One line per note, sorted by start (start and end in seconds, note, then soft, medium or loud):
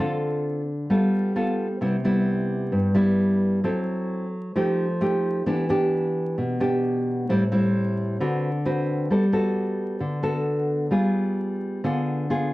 0.00 0.88 D3 medium
0.00 0.61 C4 medium
0.00 0.61 F4 medium
0.00 0.61 A4 medium
0.90 1.79 G3 medium
0.90 1.32 B3 medium
0.90 1.33 F4 soft
0.90 1.33 A4 medium
1.36 1.67 B3 soft
1.36 1.67 F4 medium
1.36 1.67 A4 medium
1.81 2.71 C3 medium
1.81 1.95 G3 medium
1.81 1.95 B3 medium
1.81 1.96 E4 medium
2.05 2.92 G3 medium
2.05 2.93 B3 medium
2.05 2.93 E4 medium
2.72 3.62 G2 medium
2.95 3.60 G3 medium
2.95 3.61 B3 medium
2.95 3.61 E4 medium
3.64 4.53 F#3 medium
3.64 4.26 C4 medium
3.64 4.26 E4 medium
3.64 4.26 A4 medium
4.55 5.45 F3 medium
4.55 4.85 A3 medium
4.55 4.85 D#4 medium
4.55 4.85 G4 medium
5.01 5.45 A3 medium
5.01 5.45 D#4 medium
5.01 5.45 G4 medium
5.46 6.35 E3 medium
5.46 5.66 B3 soft
5.46 5.66 D4 medium
5.46 5.66 G4 medium
5.69 6.57 B3 medium
5.69 6.57 D4 medium
5.69 6.57 G4 medium
6.38 7.27 B2 medium
6.60 7.25 B3 medium
6.60 7.25 D4 medium
6.60 7.25 G4 medium
7.29 8.18 A2 medium
7.29 7.43 G3 medium
7.29 7.43 C4 medium
7.29 7.43 E4 medium
7.52 8.16 G3 medium
7.52 8.16 C4 medium
7.52 8.17 E4 medium
8.20 9.09 D3 medium
8.20 8.50 C4 soft
8.20 8.50 F#4 medium
8.20 8.50 B4 medium
8.65 9.09 C4 medium
8.65 9.09 F#4 medium
8.65 9.09 B4 medium
9.10 9.99 G3 medium
9.10 9.24 B3 soft
9.10 9.25 F#4 soft
9.10 9.25 A4 medium
9.32 10.20 B3 medium
9.32 10.21 F#4 medium
9.32 10.21 A4 medium
10.00 10.90 D3 medium
10.23 10.88 B3 medium
10.23 10.89 F#4 medium
10.23 10.89 A4 medium
10.91 11.81 G3 medium
10.91 11.80 B3 soft
10.91 11.80 F4 soft
10.91 11.80 G#4 medium
11.84 12.53 D3 medium
11.84 12.26 B3 medium
11.84 12.26 F4 medium
11.84 12.26 G#4 medium
12.30 12.53 B3 medium
12.30 12.53 F4 medium
12.30 12.53 G#4 medium